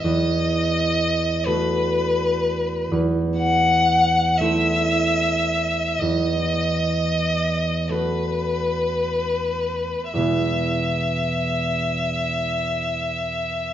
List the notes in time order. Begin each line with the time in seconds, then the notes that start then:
Already playing: B4
0.03 E2 D#5
1.46 A3 F#4 B4
2.91 E2
3.38 F#5
4.38 A3 E4 C5 E5
6.00 E2 D#5
7.89 A3 F#4 B4
7.94 B4
10.12 E2 B2 B3 E5
10.17 G#3 E4 G#4